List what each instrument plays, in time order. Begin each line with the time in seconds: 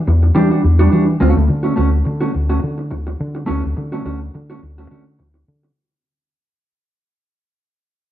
0.07 fingered electric bass E2, muted clean electric guitar stroke
0.23 muted clean electric guitar stroke
0.35 fingered electric bass E3, clean electric guitar G3 D4 G4
0.50 clean electric guitar G3 D4 F#4
0.63 fingered electric bass E2, muted clean electric guitar stroke
0.79 clean electric guitar G3 D4 F#4
0.91 fingered electric bass E3, clean electric guitar G3 D4 F#4
1.07 muted clean electric guitar stroke
1.20 fingered electric bass D2, clean electric guitar A3 C#4 F#4
1.36 fingered electric bass D2, muted clean electric guitar stroke
1.48 fingered electric bass D3, muted clean electric guitar stroke
1.63 clean electric guitar A3 C#4 F#4
1.76 fingered electric bass D2, clean electric guitar A3 C#4 F#4
1.91 muted clean electric guitar stroke
2.04 fingered electric bass D3, muted clean electric guitar stroke
2.21 clean electric guitar A3 C#4 F#4
2.33 fingered electric bass D2, muted clean electric guitar stroke
2.50 clean electric guitar A3 C#4 F#4
2.62 fingered electric bass D3, muted clean electric guitar stroke
2.78 muted clean electric guitar stroke
2.91 fingered electric bass D2, muted clean electric guitar stroke
3.07 muted clean electric guitar stroke
3.20 fingered electric bass D3
3.35 muted clean electric guitar stroke
3.46 fingered electric bass D2, clean electric guitar A3 C#4 F#4
3.64 fingered electric bass D2, muted clean electric guitar stroke
3.76 fingered electric bass D3, muted clean electric guitar stroke
3.92 clean electric guitar A3 C#4 F#4
4.05 fingered electric bass D2, clean electric guitar A3 C#4 F#4
4.21 muted clean electric guitar stroke
4.34 fingered electric bass D3, muted clean electric guitar stroke
4.50 clean electric guitar A3 C#4 F#4
4.63 fingered electric bass D2, muted clean electric guitar stroke
4.78 clean electric guitar A3 C#4 F#4
4.90 fingered electric bass D3, clean electric guitar A3 C#4 F#4
5.19 fingered electric bass D2, muted clean electric guitar stroke
5.34 muted clean electric guitar stroke
5.48 fingered electric bass D3
5.63 muted clean electric guitar stroke